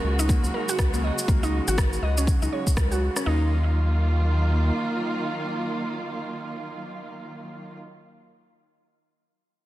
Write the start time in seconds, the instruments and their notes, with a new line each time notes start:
Already playing: string section C#3 F#3 G#3 F#4
0.04 analog synth bass C#2
0.19 synth pluck D#4, cabasa
0.29 synth pluck A#3, kick, cabasa
0.44 analog synth bass C#2, cabasa
0.54 synth pluck A#4
0.69 synth pluck F#4, cabasa
0.79 analog synth bass C#2, kick, cross-stick, cabasa
0.94 synth pluck A#3, cabasa
1.04 synth pluck D#5
1.18 cabasa
1.28 analog synth bass C#2, synth pluck A#3, kick, cabasa
1.43 synth pluck D#4, cabasa
1.68 analog synth bass G#1, synth pluck F#4, cabasa
1.78 synth pluck A#4, kick, cross-stick, cabasa
1.93 cabasa
2.02 analog synth bass C#2, synth pluck D#5
2.18 synth pluck C#4, cabasa
2.27 kick, cabasa
2.42 analog synth bass C#2, synth pluck D#4, cabasa
2.52 synth pluck C#5
2.67 kick, cabasa
2.77 analog synth bass C#2, synth pluck A#4, kick, cross-stick, cabasa
2.92 synth pluck F#4, cabasa
3.16 synth pluck C#4, cross-stick, cabasa
3.26 analog synth bass D#2, string section D#3 F#3 A#3 F4, synth pluck D#4